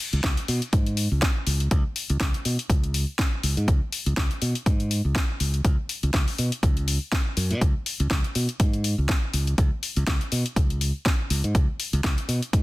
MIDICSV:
0, 0, Header, 1, 3, 480
1, 0, Start_track
1, 0, Tempo, 491803
1, 1673, Time_signature, 4, 2, 24, 8
1, 12325, End_track
2, 0, Start_track
2, 0, Title_t, "Fingered electric bass"
2, 0, Program_c, 0, 33
2, 128, Note_on_c, 0, 37, 97
2, 213, Note_off_c, 0, 37, 0
2, 232, Note_on_c, 0, 37, 85
2, 340, Note_off_c, 0, 37, 0
2, 474, Note_on_c, 0, 47, 82
2, 581, Note_off_c, 0, 47, 0
2, 712, Note_on_c, 0, 44, 73
2, 1044, Note_off_c, 0, 44, 0
2, 1089, Note_on_c, 0, 37, 83
2, 1173, Note_off_c, 0, 37, 0
2, 1433, Note_on_c, 0, 37, 80
2, 1632, Note_off_c, 0, 37, 0
2, 1672, Note_on_c, 0, 37, 90
2, 1780, Note_off_c, 0, 37, 0
2, 2049, Note_on_c, 0, 37, 93
2, 2133, Note_off_c, 0, 37, 0
2, 2395, Note_on_c, 0, 47, 82
2, 2502, Note_off_c, 0, 47, 0
2, 2633, Note_on_c, 0, 37, 88
2, 2965, Note_off_c, 0, 37, 0
2, 3353, Note_on_c, 0, 37, 88
2, 3461, Note_off_c, 0, 37, 0
2, 3487, Note_on_c, 0, 44, 97
2, 3572, Note_off_c, 0, 44, 0
2, 3592, Note_on_c, 0, 37, 91
2, 3700, Note_off_c, 0, 37, 0
2, 3966, Note_on_c, 0, 37, 94
2, 4052, Note_off_c, 0, 37, 0
2, 4313, Note_on_c, 0, 47, 85
2, 4421, Note_off_c, 0, 47, 0
2, 4552, Note_on_c, 0, 44, 80
2, 4884, Note_off_c, 0, 44, 0
2, 4927, Note_on_c, 0, 37, 82
2, 5012, Note_off_c, 0, 37, 0
2, 5274, Note_on_c, 0, 37, 83
2, 5472, Note_off_c, 0, 37, 0
2, 5511, Note_on_c, 0, 37, 93
2, 5620, Note_off_c, 0, 37, 0
2, 5887, Note_on_c, 0, 37, 98
2, 5973, Note_off_c, 0, 37, 0
2, 5991, Note_on_c, 0, 37, 80
2, 6100, Note_off_c, 0, 37, 0
2, 6234, Note_on_c, 0, 47, 79
2, 6341, Note_off_c, 0, 47, 0
2, 6472, Note_on_c, 0, 37, 89
2, 6804, Note_off_c, 0, 37, 0
2, 7194, Note_on_c, 0, 42, 100
2, 7327, Note_on_c, 0, 47, 84
2, 7341, Note_off_c, 0, 42, 0
2, 7412, Note_off_c, 0, 47, 0
2, 7433, Note_on_c, 0, 37, 88
2, 7540, Note_off_c, 0, 37, 0
2, 7808, Note_on_c, 0, 37, 96
2, 7893, Note_off_c, 0, 37, 0
2, 7913, Note_on_c, 0, 37, 83
2, 8021, Note_off_c, 0, 37, 0
2, 8155, Note_on_c, 0, 47, 80
2, 8261, Note_off_c, 0, 47, 0
2, 8394, Note_on_c, 0, 44, 77
2, 8725, Note_off_c, 0, 44, 0
2, 8767, Note_on_c, 0, 37, 81
2, 8853, Note_off_c, 0, 37, 0
2, 9113, Note_on_c, 0, 37, 77
2, 9312, Note_off_c, 0, 37, 0
2, 9352, Note_on_c, 0, 37, 91
2, 9460, Note_off_c, 0, 37, 0
2, 9728, Note_on_c, 0, 37, 99
2, 9813, Note_off_c, 0, 37, 0
2, 10074, Note_on_c, 0, 47, 82
2, 10181, Note_off_c, 0, 47, 0
2, 10311, Note_on_c, 0, 37, 86
2, 10644, Note_off_c, 0, 37, 0
2, 11033, Note_on_c, 0, 37, 91
2, 11141, Note_off_c, 0, 37, 0
2, 11167, Note_on_c, 0, 44, 97
2, 11252, Note_off_c, 0, 44, 0
2, 11272, Note_on_c, 0, 37, 96
2, 11380, Note_off_c, 0, 37, 0
2, 11646, Note_on_c, 0, 37, 94
2, 11732, Note_off_c, 0, 37, 0
2, 11991, Note_on_c, 0, 47, 83
2, 12099, Note_off_c, 0, 47, 0
2, 12233, Note_on_c, 0, 44, 80
2, 12325, Note_off_c, 0, 44, 0
2, 12325, End_track
3, 0, Start_track
3, 0, Title_t, "Drums"
3, 126, Note_on_c, 9, 42, 34
3, 224, Note_off_c, 9, 42, 0
3, 231, Note_on_c, 9, 36, 115
3, 231, Note_on_c, 9, 38, 113
3, 232, Note_on_c, 9, 42, 76
3, 329, Note_off_c, 9, 36, 0
3, 329, Note_off_c, 9, 38, 0
3, 329, Note_off_c, 9, 42, 0
3, 365, Note_on_c, 9, 42, 55
3, 462, Note_off_c, 9, 42, 0
3, 472, Note_on_c, 9, 46, 99
3, 569, Note_off_c, 9, 46, 0
3, 605, Note_on_c, 9, 42, 49
3, 703, Note_off_c, 9, 42, 0
3, 710, Note_on_c, 9, 42, 80
3, 711, Note_on_c, 9, 36, 107
3, 808, Note_off_c, 9, 42, 0
3, 809, Note_off_c, 9, 36, 0
3, 844, Note_on_c, 9, 42, 36
3, 942, Note_off_c, 9, 42, 0
3, 948, Note_on_c, 9, 46, 96
3, 1045, Note_off_c, 9, 46, 0
3, 1190, Note_on_c, 9, 38, 121
3, 1191, Note_on_c, 9, 36, 113
3, 1191, Note_on_c, 9, 42, 82
3, 1288, Note_off_c, 9, 38, 0
3, 1288, Note_off_c, 9, 42, 0
3, 1289, Note_off_c, 9, 36, 0
3, 1431, Note_on_c, 9, 46, 104
3, 1528, Note_off_c, 9, 46, 0
3, 1564, Note_on_c, 9, 42, 35
3, 1662, Note_off_c, 9, 42, 0
3, 1670, Note_on_c, 9, 42, 78
3, 1671, Note_on_c, 9, 36, 119
3, 1768, Note_off_c, 9, 42, 0
3, 1769, Note_off_c, 9, 36, 0
3, 1912, Note_on_c, 9, 46, 96
3, 2009, Note_off_c, 9, 46, 0
3, 2045, Note_on_c, 9, 42, 35
3, 2143, Note_off_c, 9, 42, 0
3, 2151, Note_on_c, 9, 36, 126
3, 2152, Note_on_c, 9, 38, 115
3, 2152, Note_on_c, 9, 42, 78
3, 2249, Note_off_c, 9, 36, 0
3, 2250, Note_off_c, 9, 38, 0
3, 2250, Note_off_c, 9, 42, 0
3, 2287, Note_on_c, 9, 42, 54
3, 2384, Note_off_c, 9, 42, 0
3, 2393, Note_on_c, 9, 46, 107
3, 2491, Note_off_c, 9, 46, 0
3, 2529, Note_on_c, 9, 42, 50
3, 2626, Note_off_c, 9, 42, 0
3, 2631, Note_on_c, 9, 36, 119
3, 2635, Note_on_c, 9, 42, 82
3, 2729, Note_off_c, 9, 36, 0
3, 2732, Note_off_c, 9, 42, 0
3, 2768, Note_on_c, 9, 42, 35
3, 2865, Note_off_c, 9, 42, 0
3, 2872, Note_on_c, 9, 46, 101
3, 2970, Note_off_c, 9, 46, 0
3, 3111, Note_on_c, 9, 36, 121
3, 3112, Note_on_c, 9, 38, 116
3, 3112, Note_on_c, 9, 42, 76
3, 3209, Note_off_c, 9, 36, 0
3, 3209, Note_off_c, 9, 38, 0
3, 3210, Note_off_c, 9, 42, 0
3, 3352, Note_on_c, 9, 46, 111
3, 3450, Note_off_c, 9, 46, 0
3, 3487, Note_on_c, 9, 42, 35
3, 3584, Note_off_c, 9, 42, 0
3, 3591, Note_on_c, 9, 36, 124
3, 3593, Note_on_c, 9, 42, 73
3, 3689, Note_off_c, 9, 36, 0
3, 3691, Note_off_c, 9, 42, 0
3, 3831, Note_on_c, 9, 46, 103
3, 3928, Note_off_c, 9, 46, 0
3, 3966, Note_on_c, 9, 42, 33
3, 4063, Note_off_c, 9, 42, 0
3, 4071, Note_on_c, 9, 36, 123
3, 4071, Note_on_c, 9, 38, 111
3, 4072, Note_on_c, 9, 42, 72
3, 4168, Note_off_c, 9, 36, 0
3, 4169, Note_off_c, 9, 38, 0
3, 4169, Note_off_c, 9, 42, 0
3, 4204, Note_on_c, 9, 42, 51
3, 4302, Note_off_c, 9, 42, 0
3, 4310, Note_on_c, 9, 46, 106
3, 4408, Note_off_c, 9, 46, 0
3, 4445, Note_on_c, 9, 42, 47
3, 4542, Note_off_c, 9, 42, 0
3, 4550, Note_on_c, 9, 36, 122
3, 4551, Note_on_c, 9, 42, 76
3, 4648, Note_off_c, 9, 36, 0
3, 4649, Note_off_c, 9, 42, 0
3, 4684, Note_on_c, 9, 42, 34
3, 4782, Note_off_c, 9, 42, 0
3, 4791, Note_on_c, 9, 46, 107
3, 4889, Note_off_c, 9, 46, 0
3, 5030, Note_on_c, 9, 36, 118
3, 5032, Note_on_c, 9, 38, 117
3, 5032, Note_on_c, 9, 42, 74
3, 5128, Note_off_c, 9, 36, 0
3, 5129, Note_off_c, 9, 38, 0
3, 5130, Note_off_c, 9, 42, 0
3, 5272, Note_on_c, 9, 46, 112
3, 5370, Note_off_c, 9, 46, 0
3, 5405, Note_on_c, 9, 42, 34
3, 5503, Note_off_c, 9, 42, 0
3, 5510, Note_on_c, 9, 36, 121
3, 5510, Note_on_c, 9, 42, 74
3, 5608, Note_off_c, 9, 36, 0
3, 5608, Note_off_c, 9, 42, 0
3, 5751, Note_on_c, 9, 46, 101
3, 5849, Note_off_c, 9, 46, 0
3, 5886, Note_on_c, 9, 42, 32
3, 5984, Note_off_c, 9, 42, 0
3, 5990, Note_on_c, 9, 36, 126
3, 5990, Note_on_c, 9, 38, 103
3, 5991, Note_on_c, 9, 42, 71
3, 6088, Note_off_c, 9, 36, 0
3, 6088, Note_off_c, 9, 38, 0
3, 6088, Note_off_c, 9, 42, 0
3, 6126, Note_on_c, 9, 46, 65
3, 6224, Note_off_c, 9, 46, 0
3, 6231, Note_on_c, 9, 46, 104
3, 6329, Note_off_c, 9, 46, 0
3, 6365, Note_on_c, 9, 42, 46
3, 6463, Note_off_c, 9, 42, 0
3, 6471, Note_on_c, 9, 36, 122
3, 6473, Note_on_c, 9, 42, 76
3, 6568, Note_off_c, 9, 36, 0
3, 6571, Note_off_c, 9, 42, 0
3, 6606, Note_on_c, 9, 42, 34
3, 6703, Note_off_c, 9, 42, 0
3, 6713, Note_on_c, 9, 46, 109
3, 6810, Note_off_c, 9, 46, 0
3, 6951, Note_on_c, 9, 36, 118
3, 6953, Note_on_c, 9, 38, 112
3, 6954, Note_on_c, 9, 42, 69
3, 7049, Note_off_c, 9, 36, 0
3, 7051, Note_off_c, 9, 38, 0
3, 7051, Note_off_c, 9, 42, 0
3, 7192, Note_on_c, 9, 46, 105
3, 7289, Note_off_c, 9, 46, 0
3, 7326, Note_on_c, 9, 42, 33
3, 7423, Note_off_c, 9, 42, 0
3, 7432, Note_on_c, 9, 36, 114
3, 7434, Note_on_c, 9, 42, 74
3, 7529, Note_off_c, 9, 36, 0
3, 7531, Note_off_c, 9, 42, 0
3, 7673, Note_on_c, 9, 46, 96
3, 7771, Note_off_c, 9, 46, 0
3, 7807, Note_on_c, 9, 42, 32
3, 7904, Note_off_c, 9, 42, 0
3, 7911, Note_on_c, 9, 36, 119
3, 7912, Note_on_c, 9, 38, 108
3, 7912, Note_on_c, 9, 42, 71
3, 8009, Note_off_c, 9, 36, 0
3, 8009, Note_off_c, 9, 38, 0
3, 8010, Note_off_c, 9, 42, 0
3, 8046, Note_on_c, 9, 42, 50
3, 8144, Note_off_c, 9, 42, 0
3, 8152, Note_on_c, 9, 46, 101
3, 8249, Note_off_c, 9, 46, 0
3, 8284, Note_on_c, 9, 42, 46
3, 8382, Note_off_c, 9, 42, 0
3, 8391, Note_on_c, 9, 42, 77
3, 8392, Note_on_c, 9, 36, 116
3, 8489, Note_off_c, 9, 36, 0
3, 8489, Note_off_c, 9, 42, 0
3, 8525, Note_on_c, 9, 42, 34
3, 8623, Note_off_c, 9, 42, 0
3, 8630, Note_on_c, 9, 46, 99
3, 8728, Note_off_c, 9, 46, 0
3, 8870, Note_on_c, 9, 38, 109
3, 8870, Note_on_c, 9, 42, 72
3, 8872, Note_on_c, 9, 36, 116
3, 8968, Note_off_c, 9, 38, 0
3, 8968, Note_off_c, 9, 42, 0
3, 8969, Note_off_c, 9, 36, 0
3, 9111, Note_on_c, 9, 46, 104
3, 9209, Note_off_c, 9, 46, 0
3, 9246, Note_on_c, 9, 42, 33
3, 9344, Note_off_c, 9, 42, 0
3, 9350, Note_on_c, 9, 42, 74
3, 9351, Note_on_c, 9, 36, 114
3, 9448, Note_off_c, 9, 36, 0
3, 9448, Note_off_c, 9, 42, 0
3, 9592, Note_on_c, 9, 46, 95
3, 9690, Note_off_c, 9, 46, 0
3, 9726, Note_on_c, 9, 42, 33
3, 9823, Note_off_c, 9, 42, 0
3, 9830, Note_on_c, 9, 36, 114
3, 9832, Note_on_c, 9, 38, 106
3, 9832, Note_on_c, 9, 42, 73
3, 9928, Note_off_c, 9, 36, 0
3, 9930, Note_off_c, 9, 38, 0
3, 9930, Note_off_c, 9, 42, 0
3, 9965, Note_on_c, 9, 42, 50
3, 10063, Note_off_c, 9, 42, 0
3, 10070, Note_on_c, 9, 46, 102
3, 10168, Note_off_c, 9, 46, 0
3, 10206, Note_on_c, 9, 42, 47
3, 10304, Note_off_c, 9, 42, 0
3, 10310, Note_on_c, 9, 36, 109
3, 10313, Note_on_c, 9, 42, 78
3, 10408, Note_off_c, 9, 36, 0
3, 10410, Note_off_c, 9, 42, 0
3, 10446, Note_on_c, 9, 42, 34
3, 10544, Note_off_c, 9, 42, 0
3, 10552, Note_on_c, 9, 46, 99
3, 10649, Note_off_c, 9, 46, 0
3, 10791, Note_on_c, 9, 36, 113
3, 10793, Note_on_c, 9, 38, 104
3, 10793, Note_on_c, 9, 42, 75
3, 10888, Note_off_c, 9, 36, 0
3, 10890, Note_off_c, 9, 38, 0
3, 10891, Note_off_c, 9, 42, 0
3, 11032, Note_on_c, 9, 46, 101
3, 11130, Note_off_c, 9, 46, 0
3, 11167, Note_on_c, 9, 42, 33
3, 11264, Note_off_c, 9, 42, 0
3, 11271, Note_on_c, 9, 36, 110
3, 11272, Note_on_c, 9, 42, 80
3, 11369, Note_off_c, 9, 36, 0
3, 11370, Note_off_c, 9, 42, 0
3, 11513, Note_on_c, 9, 46, 95
3, 11611, Note_off_c, 9, 46, 0
3, 11646, Note_on_c, 9, 42, 35
3, 11743, Note_off_c, 9, 42, 0
3, 11751, Note_on_c, 9, 36, 119
3, 11753, Note_on_c, 9, 38, 106
3, 11753, Note_on_c, 9, 42, 74
3, 11849, Note_off_c, 9, 36, 0
3, 11850, Note_off_c, 9, 38, 0
3, 11851, Note_off_c, 9, 42, 0
3, 11887, Note_on_c, 9, 42, 54
3, 11985, Note_off_c, 9, 42, 0
3, 11993, Note_on_c, 9, 46, 92
3, 12090, Note_off_c, 9, 46, 0
3, 12127, Note_on_c, 9, 42, 50
3, 12224, Note_off_c, 9, 42, 0
3, 12232, Note_on_c, 9, 36, 114
3, 12233, Note_on_c, 9, 42, 79
3, 12325, Note_off_c, 9, 36, 0
3, 12325, Note_off_c, 9, 42, 0
3, 12325, End_track
0, 0, End_of_file